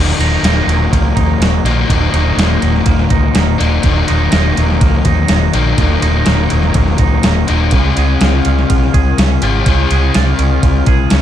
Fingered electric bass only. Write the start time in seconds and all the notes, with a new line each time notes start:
Already playing: D#1
0.19 D#1
0.43 D#1
0.67 D#1
0.92 C#2
1.16 D#2
1.39 D#1
1.64 A#1
1.90 D#1
2.13 D#1
2.37 D#1
2.62 D#1
2.87 D#1
3.10 C#2
3.35 D#1
3.60 D#1
3.84 D#1
4.10 D#1
4.33 D#1
4.58 D#1
4.81 C#2
5.05 D#2
5.29 D#1
5.55 A#1
5.78 D#1
6.03 D#1
6.28 D#1
6.52 D#1
6.75 D#1
6.99 C#2
7.24 D#1
7.49 D#1
7.73 C#2
7.97 C#2
8.21 C#2
8.46 C#2
8.70 B1
8.94 C#2
9.18 C#2
9.43 G#1
9.66 C#2
9.91 C#2
10.16 C#2
10.39 C#2
10.63 C#2
10.87 B1
11.12 C#2